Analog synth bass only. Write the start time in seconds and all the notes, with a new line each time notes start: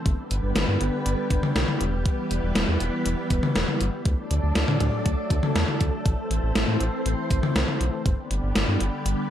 0.06 G1
0.31 G1
0.43 G1
0.56 G1
0.68 G2
0.81 G1
1.06 G1
1.31 G1
1.55 B1
1.81 E1
2.31 E1
2.43 E1
2.56 E1
2.68 E2
2.81 E1
3.06 E1
3.30 E1
3.55 E1
3.81 G1
4.05 D2
4.31 D2
4.43 D2
4.56 D2
4.68 D3
4.81 D2
5.06 D2
5.30 D2
5.55 E2
5.81 D2
6.06 A1
6.30 A1
6.43 A1
6.55 A1
6.68 A2
6.80 A1
7.06 A1
7.31 A1
7.55 C2
7.80 B1
8.06 G1
8.31 G1
8.43 G1
8.56 G1
8.68 G2
8.81 G1
9.05 G1